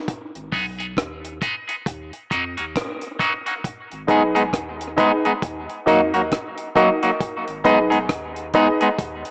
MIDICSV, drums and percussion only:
0, 0, Header, 1, 2, 480
1, 0, Start_track
1, 0, Tempo, 890208
1, 44, Time_signature, 4, 2, 24, 8
1, 5018, End_track
2, 0, Start_track
2, 0, Title_t, "Drums"
2, 43, Note_on_c, 9, 36, 109
2, 44, Note_on_c, 9, 42, 92
2, 97, Note_off_c, 9, 36, 0
2, 98, Note_off_c, 9, 42, 0
2, 190, Note_on_c, 9, 42, 49
2, 244, Note_off_c, 9, 42, 0
2, 282, Note_on_c, 9, 36, 94
2, 288, Note_on_c, 9, 46, 54
2, 336, Note_off_c, 9, 36, 0
2, 341, Note_off_c, 9, 46, 0
2, 432, Note_on_c, 9, 42, 69
2, 486, Note_off_c, 9, 42, 0
2, 522, Note_on_c, 9, 36, 93
2, 528, Note_on_c, 9, 37, 101
2, 528, Note_on_c, 9, 42, 92
2, 576, Note_off_c, 9, 36, 0
2, 582, Note_off_c, 9, 37, 0
2, 582, Note_off_c, 9, 42, 0
2, 672, Note_on_c, 9, 42, 60
2, 726, Note_off_c, 9, 42, 0
2, 764, Note_on_c, 9, 36, 106
2, 767, Note_on_c, 9, 42, 83
2, 818, Note_off_c, 9, 36, 0
2, 821, Note_off_c, 9, 42, 0
2, 910, Note_on_c, 9, 42, 58
2, 964, Note_off_c, 9, 42, 0
2, 1004, Note_on_c, 9, 36, 124
2, 1007, Note_on_c, 9, 42, 100
2, 1058, Note_off_c, 9, 36, 0
2, 1061, Note_off_c, 9, 42, 0
2, 1149, Note_on_c, 9, 42, 57
2, 1203, Note_off_c, 9, 42, 0
2, 1245, Note_on_c, 9, 36, 81
2, 1249, Note_on_c, 9, 42, 69
2, 1299, Note_off_c, 9, 36, 0
2, 1303, Note_off_c, 9, 42, 0
2, 1388, Note_on_c, 9, 42, 58
2, 1442, Note_off_c, 9, 42, 0
2, 1486, Note_on_c, 9, 36, 121
2, 1487, Note_on_c, 9, 42, 101
2, 1493, Note_on_c, 9, 37, 116
2, 1540, Note_off_c, 9, 36, 0
2, 1541, Note_off_c, 9, 42, 0
2, 1547, Note_off_c, 9, 37, 0
2, 1625, Note_on_c, 9, 42, 57
2, 1679, Note_off_c, 9, 42, 0
2, 1722, Note_on_c, 9, 36, 93
2, 1727, Note_on_c, 9, 42, 73
2, 1776, Note_off_c, 9, 36, 0
2, 1781, Note_off_c, 9, 42, 0
2, 1868, Note_on_c, 9, 42, 56
2, 1922, Note_off_c, 9, 42, 0
2, 1964, Note_on_c, 9, 36, 106
2, 1967, Note_on_c, 9, 42, 90
2, 2018, Note_off_c, 9, 36, 0
2, 2021, Note_off_c, 9, 42, 0
2, 2111, Note_on_c, 9, 42, 45
2, 2165, Note_off_c, 9, 42, 0
2, 2202, Note_on_c, 9, 36, 95
2, 2205, Note_on_c, 9, 42, 69
2, 2256, Note_off_c, 9, 36, 0
2, 2259, Note_off_c, 9, 42, 0
2, 2351, Note_on_c, 9, 42, 67
2, 2405, Note_off_c, 9, 42, 0
2, 2442, Note_on_c, 9, 36, 99
2, 2445, Note_on_c, 9, 37, 93
2, 2446, Note_on_c, 9, 42, 96
2, 2496, Note_off_c, 9, 36, 0
2, 2499, Note_off_c, 9, 37, 0
2, 2500, Note_off_c, 9, 42, 0
2, 2593, Note_on_c, 9, 42, 61
2, 2647, Note_off_c, 9, 42, 0
2, 2684, Note_on_c, 9, 36, 103
2, 2685, Note_on_c, 9, 42, 83
2, 2738, Note_off_c, 9, 36, 0
2, 2739, Note_off_c, 9, 42, 0
2, 2831, Note_on_c, 9, 42, 58
2, 2885, Note_off_c, 9, 42, 0
2, 2924, Note_on_c, 9, 36, 123
2, 2926, Note_on_c, 9, 42, 98
2, 2978, Note_off_c, 9, 36, 0
2, 2980, Note_off_c, 9, 42, 0
2, 3071, Note_on_c, 9, 42, 54
2, 3125, Note_off_c, 9, 42, 0
2, 3167, Note_on_c, 9, 36, 91
2, 3169, Note_on_c, 9, 42, 67
2, 3221, Note_off_c, 9, 36, 0
2, 3223, Note_off_c, 9, 42, 0
2, 3310, Note_on_c, 9, 42, 58
2, 3364, Note_off_c, 9, 42, 0
2, 3406, Note_on_c, 9, 42, 90
2, 3407, Note_on_c, 9, 36, 105
2, 3411, Note_on_c, 9, 37, 117
2, 3460, Note_off_c, 9, 42, 0
2, 3461, Note_off_c, 9, 36, 0
2, 3465, Note_off_c, 9, 37, 0
2, 3546, Note_on_c, 9, 42, 62
2, 3600, Note_off_c, 9, 42, 0
2, 3642, Note_on_c, 9, 36, 90
2, 3647, Note_on_c, 9, 42, 71
2, 3696, Note_off_c, 9, 36, 0
2, 3701, Note_off_c, 9, 42, 0
2, 3789, Note_on_c, 9, 42, 53
2, 3843, Note_off_c, 9, 42, 0
2, 3885, Note_on_c, 9, 36, 110
2, 3887, Note_on_c, 9, 42, 88
2, 3939, Note_off_c, 9, 36, 0
2, 3941, Note_off_c, 9, 42, 0
2, 4031, Note_on_c, 9, 42, 47
2, 4085, Note_off_c, 9, 42, 0
2, 4123, Note_on_c, 9, 36, 98
2, 4127, Note_on_c, 9, 42, 74
2, 4177, Note_off_c, 9, 36, 0
2, 4181, Note_off_c, 9, 42, 0
2, 4270, Note_on_c, 9, 42, 63
2, 4324, Note_off_c, 9, 42, 0
2, 4363, Note_on_c, 9, 36, 100
2, 4364, Note_on_c, 9, 37, 102
2, 4364, Note_on_c, 9, 42, 87
2, 4417, Note_off_c, 9, 36, 0
2, 4418, Note_off_c, 9, 37, 0
2, 4418, Note_off_c, 9, 42, 0
2, 4509, Note_on_c, 9, 42, 59
2, 4563, Note_off_c, 9, 42, 0
2, 4603, Note_on_c, 9, 42, 81
2, 4604, Note_on_c, 9, 36, 99
2, 4657, Note_off_c, 9, 42, 0
2, 4658, Note_off_c, 9, 36, 0
2, 4749, Note_on_c, 9, 42, 58
2, 4803, Note_off_c, 9, 42, 0
2, 4845, Note_on_c, 9, 36, 119
2, 4846, Note_on_c, 9, 42, 96
2, 4899, Note_off_c, 9, 36, 0
2, 4900, Note_off_c, 9, 42, 0
2, 4988, Note_on_c, 9, 42, 59
2, 5018, Note_off_c, 9, 42, 0
2, 5018, End_track
0, 0, End_of_file